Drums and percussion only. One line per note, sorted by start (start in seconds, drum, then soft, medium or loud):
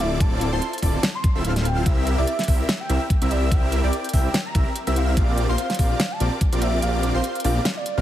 0.20 kick loud
0.20 closed hi-hat medium
0.41 closed hi-hat medium
0.62 closed hi-hat medium
0.73 closed hi-hat soft
0.78 closed hi-hat medium
0.82 kick medium
0.82 open hi-hat medium
1.03 snare loud
1.03 closed hi-hat medium
1.24 kick loud
1.24 closed hi-hat medium
1.45 closed hi-hat medium
1.56 snare soft
1.56 closed hi-hat medium
1.65 closed hi-hat medium
1.86 kick loud
1.86 closed hi-hat medium
2.07 closed hi-hat medium
2.27 closed hi-hat medium
2.39 snare soft
2.39 closed hi-hat medium
2.44 closed hi-hat medium
2.48 kick medium
2.48 open hi-hat medium
2.69 snare loud
2.69 closed hi-hat medium
2.90 closed hi-hat medium
3.10 kick loud
3.10 closed hi-hat medium
3.22 closed hi-hat medium
3.31 closed hi-hat medium
3.51 kick loud
3.51 closed hi-hat medium
3.72 closed hi-hat medium
3.93 closed hi-hat medium
4.04 closed hi-hat medium
4.09 closed hi-hat medium
4.14 kick medium
4.14 open hi-hat loud
4.34 snare loud
4.34 closed hi-hat medium
4.55 kick loud
4.55 closed hi-hat medium
4.76 closed hi-hat medium
4.87 closed hi-hat medium
4.96 closed hi-hat medium
5.17 kick loud
5.17 closed hi-hat medium
5.38 closed hi-hat medium
5.58 closed hi-hat medium
5.70 snare soft
5.70 closed hi-hat medium
5.74 closed hi-hat medium
5.79 kick medium
5.79 open hi-hat loud
6.00 snare loud
6.00 closed hi-hat medium
6.20 closed hi-hat medium
6.41 kick loud
6.41 closed hi-hat medium
6.53 closed hi-hat medium
6.62 closed hi-hat medium
6.82 closed hi-hat medium
7.03 closed hi-hat medium
7.24 closed hi-hat medium
7.35 closed hi-hat medium
7.40 closed hi-hat medium
7.44 open hi-hat loud
7.65 snare loud
7.65 closed hi-hat medium
7.86 closed hi-hat medium